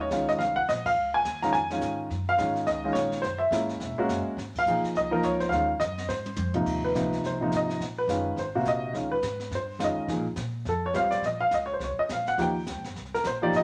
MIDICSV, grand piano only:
0, 0, Header, 1, 2, 480
1, 0, Start_track
1, 0, Tempo, 285442
1, 1616, Time_signature, 4, 2, 24, 8
1, 22927, End_track
2, 0, Start_track
2, 0, Title_t, "Grand piano"
2, 0, Program_c, 0, 0
2, 16, Note_on_c, 0, 73, 90
2, 181, Note_on_c, 0, 56, 62
2, 186, Note_on_c, 0, 61, 60
2, 192, Note_on_c, 0, 51, 69
2, 203, Note_on_c, 0, 65, 72
2, 448, Note_off_c, 0, 73, 0
2, 482, Note_on_c, 0, 75, 90
2, 648, Note_on_c, 0, 77, 91
2, 671, Note_off_c, 0, 75, 0
2, 889, Note_off_c, 0, 56, 0
2, 891, Note_off_c, 0, 61, 0
2, 894, Note_off_c, 0, 51, 0
2, 900, Note_off_c, 0, 65, 0
2, 920, Note_off_c, 0, 77, 0
2, 940, Note_on_c, 0, 78, 95
2, 1024, Note_off_c, 0, 78, 0
2, 1156, Note_on_c, 0, 75, 96
2, 1442, Note_off_c, 0, 75, 0
2, 1445, Note_on_c, 0, 77, 109
2, 1881, Note_off_c, 0, 77, 0
2, 1922, Note_on_c, 0, 80, 98
2, 2359, Note_off_c, 0, 80, 0
2, 2395, Note_on_c, 0, 82, 89
2, 2400, Note_on_c, 0, 51, 70
2, 2412, Note_on_c, 0, 56, 64
2, 2414, Note_on_c, 0, 61, 68
2, 2418, Note_on_c, 0, 65, 79
2, 2564, Note_off_c, 0, 51, 0
2, 2566, Note_on_c, 0, 80, 92
2, 2568, Note_off_c, 0, 82, 0
2, 2570, Note_off_c, 0, 56, 0
2, 2571, Note_off_c, 0, 61, 0
2, 2573, Note_off_c, 0, 65, 0
2, 2877, Note_on_c, 0, 56, 60
2, 2883, Note_on_c, 0, 61, 64
2, 2884, Note_on_c, 0, 51, 68
2, 2900, Note_on_c, 0, 65, 75
2, 3283, Note_off_c, 0, 80, 0
2, 3502, Note_off_c, 0, 56, 0
2, 3505, Note_off_c, 0, 61, 0
2, 3506, Note_off_c, 0, 51, 0
2, 3514, Note_off_c, 0, 65, 0
2, 3849, Note_on_c, 0, 77, 113
2, 3992, Note_on_c, 0, 51, 71
2, 4007, Note_on_c, 0, 56, 65
2, 4013, Note_on_c, 0, 61, 68
2, 4013, Note_on_c, 0, 65, 74
2, 4281, Note_off_c, 0, 77, 0
2, 4487, Note_on_c, 0, 75, 92
2, 4711, Note_off_c, 0, 51, 0
2, 4718, Note_off_c, 0, 56, 0
2, 4721, Note_off_c, 0, 61, 0
2, 4721, Note_off_c, 0, 65, 0
2, 4780, Note_on_c, 0, 51, 68
2, 4786, Note_on_c, 0, 56, 62
2, 4792, Note_on_c, 0, 61, 62
2, 4792, Note_on_c, 0, 65, 73
2, 4925, Note_on_c, 0, 73, 92
2, 4982, Note_off_c, 0, 75, 0
2, 5392, Note_off_c, 0, 73, 0
2, 5411, Note_on_c, 0, 72, 90
2, 5412, Note_off_c, 0, 51, 0
2, 5415, Note_off_c, 0, 56, 0
2, 5418, Note_off_c, 0, 61, 0
2, 5418, Note_off_c, 0, 65, 0
2, 5692, Note_on_c, 0, 76, 84
2, 5727, Note_off_c, 0, 72, 0
2, 5912, Note_on_c, 0, 56, 59
2, 5923, Note_on_c, 0, 58, 56
2, 5931, Note_on_c, 0, 61, 54
2, 5932, Note_on_c, 0, 64, 65
2, 6629, Note_off_c, 0, 56, 0
2, 6634, Note_off_c, 0, 58, 0
2, 6639, Note_off_c, 0, 61, 0
2, 6639, Note_off_c, 0, 64, 0
2, 6694, Note_on_c, 0, 56, 79
2, 6705, Note_on_c, 0, 61, 74
2, 6708, Note_on_c, 0, 58, 74
2, 6712, Note_on_c, 0, 66, 85
2, 7084, Note_off_c, 0, 76, 0
2, 7327, Note_off_c, 0, 56, 0
2, 7333, Note_off_c, 0, 61, 0
2, 7334, Note_off_c, 0, 58, 0
2, 7336, Note_off_c, 0, 66, 0
2, 7711, Note_on_c, 0, 77, 117
2, 7846, Note_on_c, 0, 53, 62
2, 7864, Note_on_c, 0, 58, 55
2, 7869, Note_on_c, 0, 63, 55
2, 7879, Note_on_c, 0, 68, 65
2, 8130, Note_off_c, 0, 77, 0
2, 8357, Note_on_c, 0, 75, 94
2, 8554, Note_off_c, 0, 53, 0
2, 8564, Note_off_c, 0, 58, 0
2, 8566, Note_off_c, 0, 63, 0
2, 8571, Note_off_c, 0, 68, 0
2, 8596, Note_on_c, 0, 53, 80
2, 8598, Note_on_c, 0, 63, 75
2, 8599, Note_on_c, 0, 58, 70
2, 8618, Note_on_c, 0, 70, 88
2, 8814, Note_on_c, 0, 73, 88
2, 8834, Note_off_c, 0, 75, 0
2, 9087, Note_on_c, 0, 72, 80
2, 9104, Note_off_c, 0, 73, 0
2, 9234, Note_on_c, 0, 77, 99
2, 9237, Note_off_c, 0, 53, 0
2, 9238, Note_off_c, 0, 58, 0
2, 9238, Note_off_c, 0, 63, 0
2, 9248, Note_off_c, 0, 70, 0
2, 9267, Note_off_c, 0, 72, 0
2, 9284, Note_on_c, 0, 51, 67
2, 9292, Note_on_c, 0, 61, 57
2, 9297, Note_on_c, 0, 56, 60
2, 9308, Note_on_c, 0, 65, 74
2, 9542, Note_off_c, 0, 51, 0
2, 9546, Note_off_c, 0, 61, 0
2, 9549, Note_off_c, 0, 56, 0
2, 9554, Note_off_c, 0, 65, 0
2, 9748, Note_on_c, 0, 75, 94
2, 9753, Note_off_c, 0, 77, 0
2, 10201, Note_off_c, 0, 75, 0
2, 10235, Note_on_c, 0, 72, 73
2, 10952, Note_off_c, 0, 72, 0
2, 11003, Note_on_c, 0, 48, 66
2, 11021, Note_on_c, 0, 63, 75
2, 11023, Note_on_c, 0, 58, 63
2, 11026, Note_on_c, 0, 53, 59
2, 11511, Note_on_c, 0, 71, 80
2, 11640, Note_off_c, 0, 48, 0
2, 11649, Note_off_c, 0, 63, 0
2, 11650, Note_off_c, 0, 58, 0
2, 11652, Note_off_c, 0, 53, 0
2, 11684, Note_on_c, 0, 48, 67
2, 11693, Note_on_c, 0, 53, 62
2, 11697, Note_on_c, 0, 58, 61
2, 11703, Note_on_c, 0, 63, 73
2, 12126, Note_off_c, 0, 71, 0
2, 12214, Note_on_c, 0, 72, 72
2, 12393, Note_off_c, 0, 48, 0
2, 12398, Note_off_c, 0, 53, 0
2, 12400, Note_off_c, 0, 58, 0
2, 12403, Note_off_c, 0, 63, 0
2, 12461, Note_on_c, 0, 48, 68
2, 12473, Note_on_c, 0, 53, 63
2, 12476, Note_on_c, 0, 58, 61
2, 12483, Note_on_c, 0, 63, 74
2, 12636, Note_off_c, 0, 72, 0
2, 12724, Note_on_c, 0, 75, 83
2, 13090, Note_off_c, 0, 48, 0
2, 13096, Note_off_c, 0, 53, 0
2, 13098, Note_off_c, 0, 58, 0
2, 13101, Note_off_c, 0, 63, 0
2, 13133, Note_off_c, 0, 75, 0
2, 13426, Note_on_c, 0, 71, 83
2, 13606, Note_on_c, 0, 56, 55
2, 13607, Note_on_c, 0, 61, 56
2, 13613, Note_on_c, 0, 51, 63
2, 13614, Note_on_c, 0, 65, 67
2, 14045, Note_off_c, 0, 71, 0
2, 14086, Note_off_c, 0, 56, 0
2, 14086, Note_off_c, 0, 61, 0
2, 14089, Note_off_c, 0, 51, 0
2, 14089, Note_off_c, 0, 65, 0
2, 14110, Note_on_c, 0, 72, 74
2, 14381, Note_on_c, 0, 58, 63
2, 14385, Note_on_c, 0, 66, 76
2, 14386, Note_on_c, 0, 48, 66
2, 14387, Note_on_c, 0, 65, 65
2, 14545, Note_off_c, 0, 72, 0
2, 14596, Note_on_c, 0, 75, 94
2, 15012, Note_off_c, 0, 58, 0
2, 15014, Note_off_c, 0, 48, 0
2, 15014, Note_off_c, 0, 66, 0
2, 15015, Note_off_c, 0, 65, 0
2, 15029, Note_off_c, 0, 75, 0
2, 15033, Note_on_c, 0, 51, 53
2, 15036, Note_on_c, 0, 56, 49
2, 15049, Note_on_c, 0, 61, 49
2, 15050, Note_on_c, 0, 65, 58
2, 15299, Note_off_c, 0, 51, 0
2, 15300, Note_off_c, 0, 56, 0
2, 15307, Note_off_c, 0, 61, 0
2, 15307, Note_off_c, 0, 65, 0
2, 15328, Note_on_c, 0, 71, 81
2, 15957, Note_off_c, 0, 71, 0
2, 16061, Note_on_c, 0, 72, 80
2, 16471, Note_on_c, 0, 51, 61
2, 16471, Note_on_c, 0, 56, 54
2, 16482, Note_on_c, 0, 61, 51
2, 16483, Note_on_c, 0, 65, 65
2, 16484, Note_off_c, 0, 72, 0
2, 16550, Note_on_c, 0, 75, 80
2, 16954, Note_on_c, 0, 53, 59
2, 16961, Note_off_c, 0, 51, 0
2, 16961, Note_off_c, 0, 56, 0
2, 16966, Note_off_c, 0, 61, 0
2, 16967, Note_off_c, 0, 65, 0
2, 16969, Note_off_c, 0, 75, 0
2, 16973, Note_on_c, 0, 63, 53
2, 16975, Note_on_c, 0, 58, 52
2, 16975, Note_on_c, 0, 68, 60
2, 17221, Note_off_c, 0, 53, 0
2, 17231, Note_off_c, 0, 63, 0
2, 17232, Note_off_c, 0, 58, 0
2, 17232, Note_off_c, 0, 68, 0
2, 17972, Note_on_c, 0, 69, 74
2, 18232, Note_off_c, 0, 69, 0
2, 18260, Note_on_c, 0, 73, 87
2, 18398, Note_on_c, 0, 60, 56
2, 18401, Note_on_c, 0, 55, 62
2, 18411, Note_on_c, 0, 65, 58
2, 18418, Note_on_c, 0, 72, 71
2, 18427, Note_off_c, 0, 73, 0
2, 18428, Note_on_c, 0, 77, 97
2, 18677, Note_on_c, 0, 74, 84
2, 18700, Note_off_c, 0, 77, 0
2, 18875, Note_off_c, 0, 74, 0
2, 18886, Note_off_c, 0, 60, 0
2, 18887, Note_off_c, 0, 55, 0
2, 18892, Note_off_c, 0, 65, 0
2, 18896, Note_off_c, 0, 72, 0
2, 18931, Note_on_c, 0, 75, 80
2, 19179, Note_on_c, 0, 77, 98
2, 19192, Note_off_c, 0, 75, 0
2, 19367, Note_off_c, 0, 77, 0
2, 19408, Note_on_c, 0, 75, 80
2, 19547, Note_off_c, 0, 75, 0
2, 19603, Note_on_c, 0, 73, 79
2, 19725, Note_off_c, 0, 73, 0
2, 19735, Note_on_c, 0, 72, 74
2, 19871, Note_off_c, 0, 72, 0
2, 19907, Note_on_c, 0, 73, 75
2, 20161, Note_off_c, 0, 73, 0
2, 20165, Note_on_c, 0, 75, 87
2, 20341, Note_off_c, 0, 75, 0
2, 20389, Note_on_c, 0, 77, 80
2, 20643, Note_off_c, 0, 77, 0
2, 20650, Note_on_c, 0, 78, 88
2, 20816, Note_on_c, 0, 53, 64
2, 20818, Note_on_c, 0, 58, 55
2, 20824, Note_off_c, 0, 78, 0
2, 20827, Note_on_c, 0, 63, 56
2, 20830, Note_on_c, 0, 67, 65
2, 20879, Note_on_c, 0, 79, 84
2, 21075, Note_off_c, 0, 53, 0
2, 21077, Note_off_c, 0, 58, 0
2, 21081, Note_off_c, 0, 63, 0
2, 21082, Note_off_c, 0, 67, 0
2, 21565, Note_off_c, 0, 79, 0
2, 22104, Note_on_c, 0, 70, 93
2, 22272, Note_off_c, 0, 70, 0
2, 22314, Note_on_c, 0, 72, 86
2, 22566, Note_off_c, 0, 72, 0
2, 22569, Note_on_c, 0, 53, 77
2, 22569, Note_on_c, 0, 58, 70
2, 22575, Note_on_c, 0, 63, 73
2, 22578, Note_on_c, 0, 67, 83
2, 22584, Note_on_c, 0, 74, 92
2, 22753, Note_off_c, 0, 74, 0
2, 22808, Note_on_c, 0, 75, 98
2, 22927, Note_off_c, 0, 53, 0
2, 22927, Note_off_c, 0, 58, 0
2, 22927, Note_off_c, 0, 63, 0
2, 22927, Note_off_c, 0, 67, 0
2, 22927, Note_off_c, 0, 75, 0
2, 22927, End_track
0, 0, End_of_file